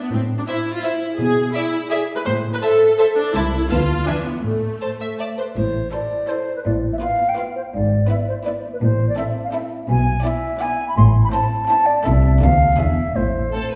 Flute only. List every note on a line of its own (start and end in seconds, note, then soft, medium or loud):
5.19 5.25 E5 medium
5.37 5.43 B4 soft
5.56 5.92 C5 medium
5.93 6.30 D5 medium
6.29 6.56 C5 medium
6.56 6.60 B4 medium
6.65 6.71 D5 medium
6.93 6.97 E5 medium
7.01 7.30 F5 medium
7.29 7.37 G5 medium
7.38 7.44 F5 medium
7.56 7.62 C5 medium
7.74 8.09 D5 medium
8.10 8.16 E5 medium
8.28 8.34 C5 medium
8.45 8.51 D5 medium
8.73 8.77 B4 medium
8.82 9.08 C5 medium
9.09 9.17 D5 medium
9.18 9.24 E5 medium
9.44 9.48 F5 medium
9.53 9.59 E5 medium
9.90 10.23 G#5 medium
10.25 10.62 E5 medium
10.61 10.88 G#5 medium
10.88 10.96 B5 medium
10.97 11.03 C6 medium
11.24 11.28 B5 medium
11.32 11.67 A5 medium
11.68 11.88 A5 medium
11.86 12.06 D5 medium
12.05 12.41 E5 medium
12.41 12.80 F5 medium
12.78 13.17 E5 medium
13.16 13.75 C5 medium